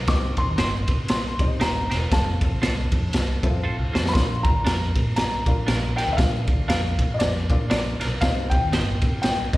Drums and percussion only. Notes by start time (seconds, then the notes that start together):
0.07 kick, snare, ride
0.37 kick, ride
0.58 snare, ride
0.88 kick, ride
1.08 snare, ride
1.39 kick, ride
1.61 snare, ride
1.91 snare, ride
2.12 kick, snare, ride
2.41 kick, ride
2.63 snare, ride
2.92 kick, ride
3.13 snare, ride
3.43 kick, ride
3.95 snare
4.06 snare
4.15 kick, snare, ride
4.45 kick, ride
4.66 snare, ride
4.95 kick, ride
5.16 snare, ride
5.46 kick, ride
5.68 snare, ride
5.98 snare, ride
6.18 kick, snare, ride
6.47 kick, ride
6.70 snare, ride
6.99 kick, ride
7.20 snare, ride
7.50 kick, ride
7.71 snare, ride
8.01 snare, ride
8.21 kick, snare, ride
8.51 kick, ride
8.73 snare, ride
9.02 kick, ride
9.23 snare, ride
9.53 kick, ride